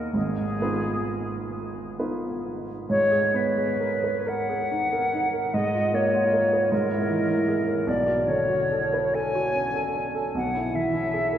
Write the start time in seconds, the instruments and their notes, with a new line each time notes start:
Already playing: grand piano D#2 A#3 D#4 G#4 C#5
0.13 grand piano G#1 G#2, flute G#4
0.61 grand piano B3 D#4 F4 B4
1.98 grand piano B3 D#4 F4 B4
2.90 grand piano G#2, flute C#5
3.12 grand piano G#4
3.34 grand piano B3, flute B4
3.57 grand piano G#4
3.80 grand piano A#4
4.04 grand piano B4
4.27 grand piano A#4, flute F#5
4.49 grand piano G#4
4.71 grand piano D#4
4.93 grand piano A#4
5.13 grand piano D#4
5.33 grand piano A#4
5.53 grand piano G#2, flute D#5
5.74 grand piano F4
5.93 grand piano A#3, flute C#5
6.14 grand piano F4
6.33 grand piano A#4
6.53 grand piano B4
6.72 grand piano G#2, flute A#4
6.91 grand piano E4
7.10 grand piano E3
7.29 grand piano E4
7.48 grand piano G#4
7.67 grand piano A#4
7.87 grand piano B1, flute D5
8.06 grand piano F#4
8.27 grand piano D3, flute C#5
8.49 grand piano F#4
8.71 grand piano A4
8.93 grand piano B4
9.14 grand piano A4, flute G#5
9.35 grand piano F#4
9.55 grand piano C#4
9.75 grand piano A4
9.95 grand piano C#4
10.15 grand piano A4
10.35 grand piano B1, flute F#5
10.54 grand piano E4
10.74 grand piano E3, flute E5
10.94 grand piano E4
11.14 grand piano G#4
11.33 grand piano A#4